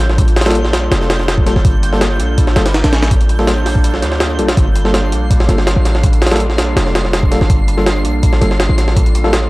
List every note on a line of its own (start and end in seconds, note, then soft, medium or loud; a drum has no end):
0.00 0.74 A1 loud
0.00 0.16 G3 medium
0.00 0.16 A#3 medium
0.00 0.16 D4 medium
0.00 0.16 F4 medium
0.00 0.16 A4 loud
0.00 4.58 G6 medium
0.10 snare soft
0.18 1.44 G3 loud
0.18 1.44 A#3 loud
0.18 1.44 D4 loud
0.18 1.44 F4 loud
0.18 1.44 A4 loud
0.18 kick loud
0.18 closed hi-hat medium
0.28 closed hi-hat soft
0.36 snare loud
0.36 closed hi-hat medium
0.41 snare medium
0.41 closed hi-hat medium
0.46 0.57 G3 loud
0.46 0.57 A#3 loud
0.46 0.57 F4 medium
0.46 0.57 A4 loud
0.46 snare medium
0.46 closed hi-hat medium
0.51 snare medium
0.51 closed hi-hat medium
0.55 closed hi-hat medium
0.65 snare soft
0.73 0.90 A#1 medium
0.73 snare loud
0.73 closed hi-hat medium
0.91 1.54 F1 medium
0.91 snare loud
0.91 closed hi-hat medium
1.01 snare soft
1.10 snare loud
1.10 closed hi-hat medium
1.20 snare soft
1.28 snare loud
1.28 closed hi-hat medium
1.38 kick loud
1.46 1.62 G3 medium
1.46 1.54 G3 medium
1.46 1.54 A#3 medium
1.46 1.62 A#3 medium
1.46 1.62 D4 medium
1.46 1.62 F4 medium
1.46 1.54 F4 medium
1.46 1.62 A4 loud
1.46 1.54 A4 medium
1.46 snare soft
1.46 closed hi-hat medium
1.56 1.64 G1 loud
1.56 snare soft
1.65 2.21 G1 loud
1.65 2.90 G3 loud
1.65 2.91 A#3 loud
1.65 2.90 D4 loud
1.65 2.90 F4 loud
1.65 2.90 A4 loud
1.65 kick loud
1.65 closed hi-hat medium
1.83 closed hi-hat medium
1.93 2.03 G3 medium
1.93 2.03 A#3 medium
1.93 2.03 F4 medium
1.93 2.03 A4 loud
1.93 snare soft
2.01 snare loud
2.01 closed hi-hat medium
2.20 2.55 A#1 medium
2.20 closed hi-hat medium
2.38 kick loud
2.38 closed hi-hat medium
2.47 snare medium
2.56 2.82 G1 medium
2.56 2.63 G3 medium
2.56 2.63 A#3 medium
2.56 2.63 F4 medium
2.56 2.63 A4 medium
2.56 snare loud
2.56 closed hi-hat medium
2.66 snare loud
2.66 closed hi-hat medium
2.74 snare loud
2.74 closed hi-hat medium
2.84 3.67 A1 loud
2.84 snare loud
2.84 closed hi-hat medium
2.92 3.09 G3 medium
2.92 3.09 A#3 medium
2.92 3.09 D4 medium
2.92 3.09 F4 medium
2.92 3.09 A4 loud
2.92 snare loud
2.92 closed hi-hat medium
3.03 snare loud
3.03 closed hi-hat medium
3.10 4.37 G3 loud
3.10 4.37 A#3 loud
3.10 4.37 D4 loud
3.10 4.37 F4 loud
3.10 4.37 A4 loud
3.10 kick loud
3.10 closed hi-hat medium
3.21 closed hi-hat soft
3.29 closed hi-hat medium
3.39 3.50 G3 loud
3.39 3.50 A#3 medium
3.39 3.50 F4 medium
3.39 3.50 A4 loud
3.39 snare soft
3.47 snare loud
3.47 closed hi-hat medium
3.66 4.04 A#1 medium
3.66 snare soft
3.66 open hi-hat medium
3.75 kick medium
3.84 closed hi-hat medium
3.94 snare soft
4.02 4.41 D2 medium
4.02 snare soft
4.02 closed hi-hat medium
4.12 snare soft
4.20 snare loud
4.20 closed hi-hat medium
4.39 4.55 A#1 medium
4.39 4.46 G3 medium
4.39 4.55 G3 medium
4.39 4.55 A#3 medium
4.39 4.46 A#3 medium
4.39 4.55 D4 medium
4.39 4.55 F4 medium
4.39 4.46 F4 medium
4.39 4.46 A4 medium
4.39 4.55 A4 loud
4.39 closed hi-hat medium
4.49 snare loud
4.49 closed hi-hat medium
4.57 5.14 G1 loud
4.57 5.83 G3 loud
4.57 5.83 A#3 loud
4.57 5.83 D4 loud
4.57 5.83 F4 loud
4.57 5.83 A4 loud
4.57 9.49 C7 medium
4.57 kick loud
4.57 closed hi-hat medium
4.76 closed hi-hat medium
4.85 4.96 G3 medium
4.85 4.96 A#3 medium
4.85 4.96 F4 medium
4.85 4.96 A4 loud
4.85 snare soft
4.94 snare loud
4.94 closed hi-hat medium
5.12 5.47 A#1 medium
5.12 closed hi-hat medium
5.31 kick loud
5.31 closed hi-hat medium
5.40 snare medium
5.49 5.75 G1 loud
5.49 5.56 G3 medium
5.49 5.56 A#3 medium
5.49 5.56 F4 medium
5.49 5.56 A4 medium
5.49 snare soft
5.49 closed hi-hat medium
5.58 snare medium
5.67 snare loud
5.67 closed hi-hat medium
5.76 6.60 A1 loud
5.85 6.01 G3 medium
5.85 6.01 A#3 medium
5.85 6.01 D4 medium
5.85 6.01 F4 medium
5.85 6.01 A4 loud
5.85 snare soft
5.85 closed hi-hat medium
5.95 snare medium
6.03 7.30 G3 loud
6.03 7.30 A#3 loud
6.03 7.30 D4 loud
6.03 7.29 F4 loud
6.03 7.29 A4 loud
6.03 kick loud
6.03 closed hi-hat medium
6.13 closed hi-hat soft
6.22 snare medium
6.22 closed hi-hat medium
6.27 snare loud
6.27 closed hi-hat medium
6.31 6.42 G3 loud
6.31 6.42 A#3 medium
6.31 6.42 F4 medium
6.31 6.42 A4 loud
6.31 snare medium
6.31 closed hi-hat medium
6.36 snare medium
6.36 closed hi-hat medium
6.40 closed hi-hat medium
6.50 snare soft
6.58 6.75 A#1 medium
6.58 snare loud
6.58 closed hi-hat medium
6.76 7.39 F1 medium
6.76 snare loud
6.76 closed hi-hat medium
6.86 snare soft
6.95 snare loud
6.95 closed hi-hat medium
7.05 snare soft
7.13 snare loud
7.13 closed hi-hat medium
7.23 kick loud
7.31 7.39 G3 medium
7.31 7.48 G3 medium
7.31 7.39 A#3 medium
7.31 7.48 A#3 medium
7.31 7.48 D4 medium
7.31 7.39 F4 medium
7.31 7.48 F4 medium
7.31 7.39 A4 medium
7.31 7.48 A4 loud
7.31 snare soft
7.31 closed hi-hat medium
7.41 7.49 G1 loud
7.41 snare soft
7.49 8.06 G1 loud
7.49 8.76 G3 loud
7.49 8.76 A#3 loud
7.49 8.76 D4 medium
7.49 8.76 F4 loud
7.49 8.76 A4 loud
7.49 kick loud
7.49 closed hi-hat medium
7.68 closed hi-hat medium
7.77 7.88 G3 medium
7.77 7.88 A#3 medium
7.77 7.88 F4 medium
7.77 7.88 A4 loud
7.77 snare soft
7.86 snare loud
7.86 closed hi-hat medium
8.05 8.40 A#1 medium
8.05 closed hi-hat medium
8.23 kick loud
8.23 closed hi-hat medium
8.33 snare medium
8.41 8.68 G1 medium
8.41 8.49 G3 medium
8.41 8.49 A#3 medium
8.41 8.49 F4 medium
8.41 8.49 A4 medium
8.41 snare soft
8.41 closed hi-hat medium
8.51 snare medium
8.60 snare loud
8.60 closed hi-hat medium
8.69 9.49 A1 loud
8.78 8.94 G3 medium
8.78 8.94 A#3 medium
8.78 8.94 D4 medium
8.78 8.94 F4 medium
8.78 8.94 A4 loud
8.78 snare soft
8.78 closed hi-hat medium
8.88 snare medium
8.96 9.49 G3 loud
8.96 9.49 A#3 loud
8.96 9.49 D4 medium
8.96 9.49 F4 loud
8.96 9.49 A4 loud
8.96 kick loud
8.96 closed hi-hat medium
9.06 closed hi-hat soft
9.15 closed hi-hat medium
9.24 9.35 G3 loud
9.24 9.35 A#3 medium
9.24 9.35 F4 medium
9.24 9.35 A4 loud
9.24 snare soft
9.33 snare loud
9.33 closed hi-hat medium